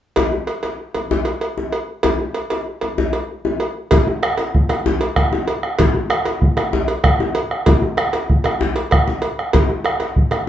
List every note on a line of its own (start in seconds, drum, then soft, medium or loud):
0.16 cowbell medium
0.16 djembe slap medium
0.16 djembe bass medium
0.32 djembe tone medium
0.47 cowbell soft
0.63 cowbell soft
0.63 djembe slap soft
0.94 cowbell soft
0.94 djembe slap soft
0.94 djembe tone soft
1.11 djembe slap medium
1.11 djembe bass medium
1.25 cowbell soft
1.25 djembe slap soft
1.41 cowbell soft
1.58 djembe slap soft
1.58 djembe tone soft
1.72 cowbell soft
2.03 cowbell medium
2.03 djembe slap medium
2.03 djembe bass medium
2.20 djembe tone soft
2.34 cowbell soft
2.50 cowbell soft
2.50 djembe slap soft
2.81 cowbell soft
2.81 djembe slap soft
2.81 djembe tone soft
2.98 djembe slap medium
2.98 djembe bass medium
3.13 cowbell soft
3.13 djembe slap soft
3.45 djembe slap medium
3.45 djembe tone medium
3.60 cowbell soft
3.91 bombo low loud
3.91 cowbell medium
3.91 djembe slap medium
3.91 djembe bass medium
4.07 bombo rim soft
4.07 djembe slap soft
4.07 djembe tone medium
4.23 bombo rim medium
4.23 cowbell soft
4.38 bombo rim soft
4.38 cowbell soft
4.38 djembe slap medium
4.55 bombo rim soft
4.55 bombo low medium
4.69 bombo rim medium
4.69 cowbell soft
4.69 djembe tone medium
4.86 djembe slap medium
4.86 djembe bass medium
5.01 cowbell soft
5.01 djembe slap soft
5.16 bombo rim medium
5.16 bombo low medium
5.16 cowbell soft
5.33 djembe slap medium
5.33 djembe tone medium
5.48 cowbell medium
5.63 bombo rim medium
5.63 djembe slap soft
5.79 bombo low medium
5.79 cowbell medium
5.79 djembe slap medium
5.79 djembe bass medium
5.95 djembe slap soft
5.95 djembe tone medium
6.10 bombo rim medium
6.10 cowbell soft
6.25 bombo rim soft
6.25 cowbell soft
6.25 djembe slap medium
6.42 bombo rim soft
6.42 bombo low medium
6.57 bombo rim medium
6.57 cowbell soft
6.57 djembe tone medium
6.73 djembe slap medium
6.73 djembe bass medium
6.88 cowbell soft
6.88 djembe slap soft
7.04 bombo rim medium
7.04 bombo low medium
7.04 cowbell soft
7.04 djembe slap soft
7.20 djembe slap medium
7.20 djembe tone medium
7.35 cowbell medium
7.51 bombo rim medium
7.51 djembe slap soft
7.66 bombo low loud
7.66 cowbell medium
7.66 djembe slap medium
7.66 djembe bass medium
7.82 bombo rim soft
7.82 djembe slap soft
7.82 djembe tone medium
7.97 bombo rim medium
7.97 cowbell soft
8.13 bombo rim soft
8.13 cowbell medium
8.13 djembe slap medium
8.30 bombo rim soft
8.30 bombo low medium
8.44 bombo rim medium
8.44 cowbell soft
8.44 djembe tone medium
8.61 djembe slap medium
8.61 djembe bass medium
8.76 cowbell soft
8.76 djembe slap soft
8.91 bombo rim medium
8.91 bombo low medium
8.91 cowbell soft
8.91 djembe slap soft
9.07 djembe slap medium
9.07 djembe tone medium
9.22 cowbell soft
9.39 bombo rim medium
9.39 djembe slap soft
9.53 bombo low medium
9.53 cowbell medium
9.53 djembe slap medium
9.53 djembe bass medium
9.70 bombo rim soft
9.70 djembe tone medium
9.84 bombo rim medium
9.84 cowbell soft
9.84 djembe slap soft
10.00 bombo rim soft
10.00 cowbell soft
10.00 djembe slap medium
10.16 bombo low medium
10.31 bombo rim medium
10.31 cowbell soft
10.31 djembe tone medium